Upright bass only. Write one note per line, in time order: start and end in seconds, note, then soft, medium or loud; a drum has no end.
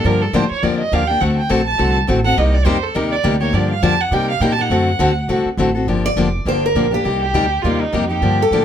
0.04 0.32 G2 medium
0.33 0.49 A2 medium
0.50 muted upright bass stroke soft
0.63 0.91 F2 medium
0.92 1.20 D#2 medium
1.21 1.49 D2 medium
1.50 1.78 A#1 medium
1.79 2.07 C2 medium
2.08 2.37 A1 medium
2.37 2.65 C2 medium
2.66 2.94 F2 medium
2.95 3.23 D#2 medium
3.24 3.52 D2 loud
3.53 3.82 G2 medium
3.82 4.10 F2 medium
4.11 4.40 C3 medium
4.40 4.69 A#2 medium
4.70 4.99 F#2 medium
4.99 5.27 D2 medium
5.28 5.44 C2 medium
5.45 muted upright bass stroke soft
5.57 5.86 A1 loud
5.87 6.15 G1 medium
6.16 6.45 F1 medium
6.45 6.74 G1 medium
6.75 7.04 A#1 medium
7.04 7.33 C2 medium
7.34 7.62 D2 medium
7.63 7.92 D#2 medium
7.93 8.21 F2 medium
8.22 8.50 G2 medium
8.51 8.65 A2 medium